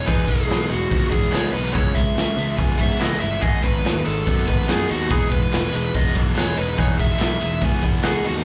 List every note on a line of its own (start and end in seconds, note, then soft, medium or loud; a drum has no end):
0.00 0.27 G#3 medium
0.00 0.91 B3 medium
0.00 0.91 D#4 medium
0.07 0.24 E1 medium
0.07 0.48 E3 medium
0.07 0.27 B3 medium
0.07 0.27 D#4 medium
0.07 0.27 G#4 medium
0.07 0.28 B4 medium
0.07 kick loud
0.07 closed hi-hat medium
0.27 0.44 E1 medium
0.27 0.69 G#3 medium
0.27 0.47 B3 medium
0.27 0.47 D#4 medium
0.27 0.68 G#4 medium
0.27 kick medium
0.27 closed hi-hat medium
0.40 closed hi-hat medium
0.48 0.65 B1 medium
0.48 1.11 E3 medium
0.48 0.67 B3 medium
0.48 0.67 D#4 medium
0.48 snare loud
0.48 closed hi-hat medium
0.69 0.86 E1 medium
0.69 1.33 G#3 medium
0.69 0.88 B3 medium
0.69 0.89 D#4 medium
0.69 1.10 F#4 medium
0.69 closed hi-hat medium
0.90 1.07 C#2 medium
0.90 1.09 B3 medium
0.90 1.77 B3 medium
0.90 1.09 D#4 medium
0.90 kick loud
0.90 closed hi-hat medium
1.10 1.28 E1 medium
1.10 1.73 E3 medium
1.10 1.30 B3 medium
1.10 1.30 D#4 medium
1.10 1.33 G#4 medium
1.10 kick medium
1.10 closed hi-hat medium
1.23 closed hi-hat medium
1.31 1.49 C#2 medium
1.31 1.96 G#3 medium
1.31 1.50 B3 medium
1.31 1.51 D#4 medium
1.31 1.52 G#4 medium
1.31 1.51 C#5 medium
1.31 snare loud
1.31 closed hi-hat medium
1.46 snare soft
1.51 1.70 B1 medium
1.51 1.71 B3 medium
1.51 1.72 D#4 medium
1.51 1.75 D#4 medium
1.51 1.73 B4 medium
1.51 closed hi-hat medium
1.65 closed hi-hat medium
1.73 1.91 C#2 medium
1.73 2.17 C#3 medium
1.73 1.92 E3 medium
1.73 1.93 B3 loud
1.73 1.94 E4 medium
1.73 1.96 C#5 medium
1.73 kick loud
1.73 closed hi-hat medium
1.93 2.12 C#2 medium
1.93 2.13 E3 medium
1.93 2.37 G#3 medium
1.93 2.14 B3 medium
1.93 2.54 E5 medium
1.93 kick medium
1.93 closed hi-hat medium
2.15 2.34 C#2 medium
2.15 2.79 C#3 medium
2.15 2.35 E3 medium
2.15 2.35 B3 medium
2.15 snare loud
2.15 closed hi-hat medium
2.36 2.54 C#2 loud
2.36 2.56 E3 medium
2.36 3.00 G#3 medium
2.36 2.56 B3 medium
2.36 closed hi-hat medium
2.57 2.74 C#2 medium
2.57 2.77 E3 medium
2.57 2.78 B3 medium
2.57 4.25 B3 medium
2.57 2.80 G#5 loud
2.57 kick loud
2.57 closed hi-hat medium
2.78 2.96 G#2 medium
2.78 3.43 C#3 medium
2.78 2.98 E3 medium
2.78 2.98 B3 medium
2.78 3.00 E5 loud
2.78 kick medium
2.78 closed hi-hat medium
2.91 closed hi-hat medium
3.00 3.17 C#2 medium
3.00 3.19 E3 medium
3.00 4.04 G#3 medium
3.00 3.19 B3 medium
3.00 3.20 E4 medium
3.00 3.19 D#5 medium
3.00 snare loud
3.00 closed hi-hat medium
3.20 3.38 G1 medium
3.20 3.40 E3 medium
3.20 3.40 B3 medium
3.20 3.42 E4 medium
3.20 3.40 E5 medium
3.20 closed hi-hat medium
3.41 3.59 G#1 medium
3.41 4.47 G#2 medium
3.41 3.62 B3 medium
3.41 3.62 D#4 medium
3.41 3.62 G#4 loud
3.41 3.64 D#5 medium
3.41 kick loud
3.41 closed hi-hat medium
3.63 3.80 G#1 medium
3.63 3.84 D#3 medium
3.63 3.82 B3 medium
3.63 3.82 D#4 medium
3.63 4.05 B4 medium
3.63 kick medium
3.63 closed hi-hat medium
3.74 closed hi-hat medium
3.85 4.01 D#2 medium
3.85 4.45 D#3 medium
3.85 4.03 B3 medium
3.85 4.04 D#4 medium
3.85 snare loud
3.85 closed hi-hat medium
4.05 4.22 G#1 medium
4.05 4.67 G#3 medium
4.05 4.24 B3 medium
4.05 4.25 D#4 medium
4.05 4.44 A4 medium
4.05 closed hi-hat medium
4.26 4.43 F#2 medium
4.26 5.94 B3 medium
4.26 4.46 B3 medium
4.26 4.46 D#4 medium
4.26 kick loud
4.26 closed hi-hat medium
4.46 4.64 G#1 medium
4.46 5.10 D#3 medium
4.46 4.67 B3 medium
4.46 4.67 D#4 medium
4.46 4.68 B4 medium
4.46 kick medium
4.46 closed hi-hat medium
4.59 closed hi-hat medium
4.67 4.85 F#2 medium
4.67 5.32 G#3 medium
4.67 4.88 B3 medium
4.67 4.88 D#4 medium
4.67 4.90 G#4 medium
4.67 4.89 G#4 medium
4.67 snare loud
4.67 closed hi-hat medium
4.89 5.12 D#2 medium
4.89 5.09 B3 medium
4.89 5.13 D#4 medium
4.89 5.09 D#4 medium
4.89 5.09 F#4 medium
4.89 closed hi-hat medium
5.00 closed hi-hat medium
5.10 5.27 E1 medium
5.10 5.53 E3 medium
5.10 5.30 B3 loud
5.10 5.31 D#4 medium
5.10 5.29 G#4 medium
5.10 5.31 G#4 loud
5.10 kick loud
5.10 closed hi-hat medium
5.30 5.48 E1 medium
5.30 5.72 G#3 medium
5.30 5.51 B3 medium
5.30 5.51 D#4 medium
5.30 5.95 B4 medium
5.30 kick medium
5.30 closed hi-hat medium
5.53 5.69 E1 medium
5.53 6.14 E3 medium
5.53 5.72 B3 medium
5.53 5.72 D#4 medium
5.53 snare loud
5.53 clap loud
5.53 closed hi-hat medium
5.73 5.89 E1 medium
5.73 6.35 G#3 medium
5.73 5.93 B3 medium
5.73 5.93 D#4 medium
5.73 closed hi-hat medium
5.94 6.11 E1 medium
5.94 7.61 B3 medium
5.94 6.14 B3 medium
5.94 6.14 D#4 medium
5.94 6.14 D#5 medium
5.94 kick loud
5.94 closed hi-hat medium
6.15 6.31 B1 medium
6.15 6.76 E3 medium
6.15 6.34 B3 medium
6.15 6.35 D#4 medium
6.15 kick medium
6.15 closed hi-hat medium
6.25 closed hi-hat medium
6.35 6.53 E1 medium
6.35 6.97 G#3 medium
6.35 6.56 B3 medium
6.35 6.57 D#4 medium
6.35 6.57 G#4 medium
6.35 6.58 C#5 medium
6.35 snare loud
6.35 clap medium
6.35 closed hi-hat medium
6.48 snare soft
6.56 6.74 E1 medium
6.56 6.77 B3 medium
6.56 7.62 D#4 medium
6.56 6.76 D#4 medium
6.56 6.79 B4 medium
6.56 closed hi-hat medium
6.77 6.94 E1 loud
6.77 7.17 E3 medium
6.77 6.98 B3 medium
6.77 6.98 D#4 loud
6.77 6.98 G#4 loud
6.77 6.85 C#5 medium
6.77 kick loud
6.77 closed hi-hat medium
6.98 7.15 E1 medium
6.98 7.40 G#3 medium
6.98 7.18 B3 medium
6.98 7.65 E5 loud
6.98 kick medium
6.98 closed hi-hat medium
7.10 closed hi-hat medium
7.18 7.37 B1 medium
7.18 7.81 E3 medium
7.18 7.40 B3 medium
7.18 7.40 D#4 medium
7.18 snare loud
7.18 clap medium
7.18 closed hi-hat medium
7.40 7.58 E1 loud
7.40 8.02 G#3 medium
7.40 7.60 B3 medium
7.40 7.60 D#4 medium
7.40 closed hi-hat medium
7.61 7.78 C#2 medium
7.61 8.44 B3 medium
7.61 7.81 B3 medium
7.61 7.81 D#4 medium
7.61 7.83 G#5 loud
7.61 kick loud
7.61 closed hi-hat medium
7.82 7.99 E1 medium
7.82 8.44 E3 medium
7.82 8.02 B3 medium
7.82 8.02 D#4 medium
7.82 kick medium
7.82 closed hi-hat medium
7.93 closed hi-hat medium
8.03 8.21 C#2 medium
8.03 8.44 G#3 medium
8.03 8.23 B3 medium
8.03 8.23 D#4 medium
8.03 8.24 G#4 medium
8.03 snare loud
8.03 clap medium
8.03 closed hi-hat medium
8.07 8.25 G#4 medium
8.24 8.41 D#2 medium
8.24 8.44 B3 medium
8.24 8.44 D#4 medium
8.24 8.32 F#4 medium
8.24 closed hi-hat medium
8.34 closed hi-hat medium